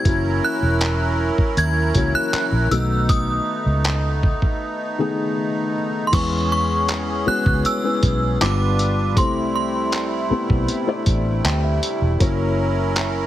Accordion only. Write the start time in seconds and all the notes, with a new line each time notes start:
Already playing: E4
0.06 F#3 C#4 A#4
2.71 A3 B3 D#4
6.13 E3 B3 C#4 G#4
8.41 G3 D4 F4 B4
9.16 C3 A3 E4
12.20 F#3 C#4 A#4